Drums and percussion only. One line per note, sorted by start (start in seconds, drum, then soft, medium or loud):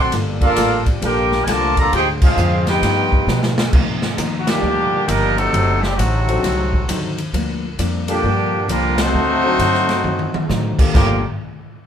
0.12 snare soft
0.12 ride medium
0.41 kick medium
0.41 ride medium
0.56 snare soft
0.56 hi-hat pedal medium
0.56 ride medium
0.86 kick medium
0.86 ride medium
1.02 ride medium
1.32 snare soft
1.47 snare soft
1.47 hi-hat pedal medium
1.47 ride medium
1.77 kick medium
1.77 ride medium
1.93 ride medium
2.22 kick loud
2.22 crash medium
2.37 hi-hat pedal medium
2.67 snare medium
2.67 ride medium
2.83 snare soft
2.83 ride medium
3.12 kick medium
3.28 snare medium
3.28 hi-hat pedal medium
3.43 snare medium
3.58 snare loud
3.73 kick medium
3.73 crash medium
4.02 snare medium
4.18 hi-hat pedal medium
4.18 ride medium
4.47 snare medium
4.47 ride medium
5.08 hi-hat pedal medium
5.08 ride medium
5.38 ride medium
5.54 ride medium
5.83 snare medium
5.99 hi-hat pedal medium
5.99 ride medium
6.29 ride medium
6.44 snare soft
6.44 ride medium
6.73 kick medium
6.89 hi-hat pedal medium
6.89 ride medium
7.18 ride medium
7.34 ride medium
7.79 hi-hat pedal medium
7.79 ride medium
8.08 ride medium
8.69 hi-hat pedal medium
8.69 ride medium
8.98 snare loud
8.98 ride medium
9.59 hi-hat pedal medium
9.59 ride medium
9.74 snare soft
9.89 snare medium
9.89 ride medium
10.04 high tom medium
10.19 high tom medium
10.34 high tom medium
10.50 snare medium
10.50 hi-hat pedal medium
10.79 kick medium
10.79 crash medium
10.94 kick loud
10.94 snare medium
10.94 crash medium